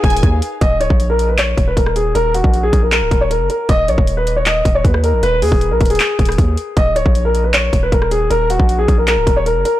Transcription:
Already playing: flute section D#4 B4 F5 G#5, grand piano G#4
0.04 808-style bass D#1, violin section G#5, kick, closed hi-hat
0.10 closed hi-hat
0.17 closed hi-hat
0.23 808-style bass D#2, kick, closed hi-hat
0.42 closed hi-hat
0.61 808-style bass D#1, grand piano D#5, kick, closed hi-hat
0.80 808-style bass C#1, grand piano C#5, closed hi-hat
0.90 808-style bass A#1, kick
1.00 closed hi-hat
1.10 grand piano A#4
1.19 closed hi-hat
1.29 grand piano B4
1.38 grand piano C#5, clap, closed hi-hat
1.57 808-style bass D#1, kick, closed hi-hat
1.67 grand piano B4
1.77 808-style bass D#1, grand piano A#4, kick, closed hi-hat
1.86 cross-stick
1.96 grand piano G#4, closed hi-hat
2.15 808-style bass D#1, grand piano A#4, closed hi-hat
2.34 grand piano F#4, closed hi-hat
2.44 808-style bass A#1, kick
2.54 closed hi-hat
2.63 grand piano G#4
2.73 808-style bass A#1, kick, closed hi-hat
2.82 grand piano A#4
2.92 grand piano A#4, clap, closed hi-hat
3.02 808-style bass C#1
3.11 808-style bass D#1, kick, closed hi-hat
3.21 grand piano C#5
3.31 grand piano A#4, closed hi-hat
3.40 808-style bass F#1
3.50 grand piano A#4, closed hi-hat
3.69 808-style bass D#1, grand piano D#5, kick, closed hi-hat
3.88 808-style bass A#1, grand piano C#5, closed hi-hat
3.98 808-style bass D#1, kick
4.07 closed hi-hat
4.17 grand piano B4
4.27 closed hi-hat
4.36 grand piano C#5
4.46 grand piano D#5, clap, closed hi-hat
4.65 808-style bass D#1, kick, closed hi-hat
4.75 grand piano C#5
4.84 808-style bass D#2, grand piano B4, kick, closed hi-hat
4.94 cross-stick
5.04 grand piano A#4, closed hi-hat
5.13 808-style bass A#1
5.23 808-style bass D#1, grand piano B4, closed hi-hat
5.42 808-style bass D#2, grand piano G#4, open hi-hat
5.52 808-style bass D#1, kick
5.61 closed hi-hat
5.71 808-style bass A#1, grand piano A#4
5.81 808-style bass D#1, kick, closed hi-hat
5.85 closed hi-hat
5.90 grand piano G#4, closed hi-hat
5.95 closed hi-hat
6.00 clap, closed hi-hat
6.19 808-style bass D#1, kick, closed hi-hat
6.25 cross-stick, closed hi-hat
6.32 closed hi-hat
6.38 808-style bass D#2, kick, closed hi-hat
6.57 closed hi-hat
6.77 808-style bass D#1, grand piano D#5, kick, closed hi-hat
6.96 808-style bass C#1, grand piano C#5, closed hi-hat
7.06 808-style bass A#1, kick
7.15 closed hi-hat
7.25 grand piano A#4
7.35 closed hi-hat
7.44 grand piano B4
7.54 grand piano C#5, clap, closed hi-hat
7.73 808-style bass D#1, kick, closed hi-hat
7.83 grand piano B4
7.92 808-style bass D#1, grand piano A#4, kick, closed hi-hat
8.02 cross-stick
8.11 grand piano G#4, closed hi-hat
8.30 808-style bass D#1, grand piano A#4, closed hi-hat
8.50 grand piano F#4, closed hi-hat
8.59 808-style bass A#1, kick
8.69 closed hi-hat
8.79 grand piano G#4
8.88 808-style bass A#1, kick, closed hi-hat
8.98 grand piano A#4
9.07 grand piano A#4, clap, closed hi-hat
9.17 808-style bass C#1
9.27 808-style bass D#1, kick, closed hi-hat
9.36 grand piano C#5
9.46 grand piano A#4, closed hi-hat
9.56 808-style bass F#1
9.65 grand piano A#4, closed hi-hat

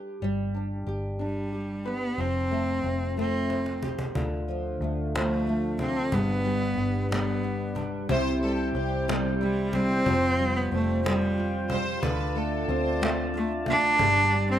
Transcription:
Already playing: nylon-string guitar G3 D4 G4 B4
0.22 fingered electric bass G1, nylon-string guitar G3
0.54 nylon-string guitar D4
0.87 fingered electric bass G1, nylon-string guitar G4
1.19 cello G3, nylon-string guitar D4
1.52 nylon-string guitar G4
1.85 cello B3, nylon-string guitar B4
2.18 fingered electric bass F1, nylon-string guitar F3, cello C4
2.51 nylon-string guitar A3
2.84 fingered electric bass F1, nylon-string guitar C4
3.17 nylon-string guitar A3, cello C4, cajon slap
3.50 nylon-string guitar C4, cajon slap
3.66 cajon slap
3.83 nylon-string guitar G4, cajon bass
3.99 cajon bass
4.15 fingered electric bass D2, nylon-string guitar D3, tonewheel organ D3 A3 F4, cajon bass
4.48 nylon-string guitar F3, cajon slap
4.81 fingered electric bass D2, nylon-string guitar A3, cajon slap
5.15 nylon-string guitar F3, cello A3, cajon slap
5.47 nylon-string guitar A3, cajon slap
5.79 cello C4, nylon-string guitar D4, cajon bass
6.12 fingered electric bass G1, nylon-string guitar G2, tonewheel organ G3 D4 B4, cello B3, cajon bass
6.45 nylon-string guitar G3
6.77 fingered electric bass G1, nylon-string guitar B3
7.11 nylon-string guitar G3, cello B3, cajon slap
7.43 nylon-string guitar B3, cajon slap
7.75 nylon-string guitar D4, cajon bass
8.09 fingered electric bass C2, nylon-string guitar C3 E4, tonewheel organ E4 C5 G5, violin section C5, cajon bass
8.42 nylon-string guitar G3, violin section A4, cajon slap
8.74 fingered electric bass C2, nylon-string guitar C4, violin section G4, cajon slap
9.08 nylon-string guitar G3, cajon slap
9.41 cello G3, nylon-string guitar E4, cajon slap
9.73 nylon-string guitar G3, cello C4, cajon bass
10.06 fingered electric bass F1, nylon-string guitar F3 F4, tonewheel organ F4, cajon bass
10.39 nylon-string guitar G3, cajon slap
10.56 cello B3
10.72 fingered electric bass F1, cello A3, nylon-string guitar C4
11.04 nylon-string guitar G3, cello G3, cajon slap
11.37 nylon-string guitar F4, cajon slap
11.70 nylon-string guitar G3, violin section C5, cajon bass
12.02 fingered electric bass D2, nylon-string guitar D3 F4, tonewheel organ F4 D5 A5, violin section B4, cajon bass
12.35 nylon-string guitar A3, violin section A4, cajon slap
12.68 fingered electric bass D2, nylon-string guitar C4, violin section C5
13.02 nylon-string guitar A3, cajon slap
13.34 cello A3, nylon-string guitar F4, cajon slap
13.66 nylon-string guitar A3, cello D4, cajon bass
13.99 fingered electric bass G1, nylon-string guitar G2 D4, tonewheel organ G4, cajon bass
14.32 nylon-string guitar G3
14.51 cello C4

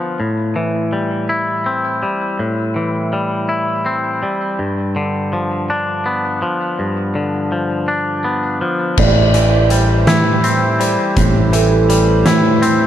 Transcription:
Already playing: clean electric guitar D3 F3 B3 F4
0.20 clean electric guitar A2
0.56 clean electric guitar E3
0.93 clean electric guitar G3
1.29 clean electric guitar E4
1.66 clean electric guitar C4
2.03 clean electric guitar G3
2.39 clean electric guitar A2
2.76 clean electric guitar E3
3.13 clean electric guitar G3
3.49 clean electric guitar E4
3.86 clean electric guitar C4
4.23 clean electric guitar G3
4.59 clean electric guitar G2
4.96 clean electric guitar D3
5.33 clean electric guitar F3
5.70 clean electric guitar D4
6.06 clean electric guitar B3
6.42 clean electric guitar F3
6.79 clean electric guitar G2
7.15 clean electric guitar D3
7.52 clean electric guitar F3
7.88 clean electric guitar D4
8.24 clean electric guitar B3
8.61 clean electric guitar F3
8.97 picked electric bass A1, clean electric guitar A2, accordion E3 A3 G4 C5, vibraphone D5, kick, crash
9.34 clean electric guitar E3, closed hi-hat
9.70 clean electric guitar G3, vibraphone C5, closed hi-hat
10.07 picked electric bass A2, clean electric guitar E4, snare, closed hi-hat
10.44 clean electric guitar C4, closed hi-hat
10.80 clean electric guitar G3, vibraphone C5, closed hi-hat
11.17 picked electric bass A1, clean electric guitar A2, kick, closed hi-hat
11.53 clean electric guitar E3, vibraphone A4, closed hi-hat
11.90 clean electric guitar G3, closed hi-hat
12.26 picked electric bass A2, clean electric guitar E4, snare, closed hi-hat
12.62 clean electric guitar C4, vibraphone C5, closed hi-hat

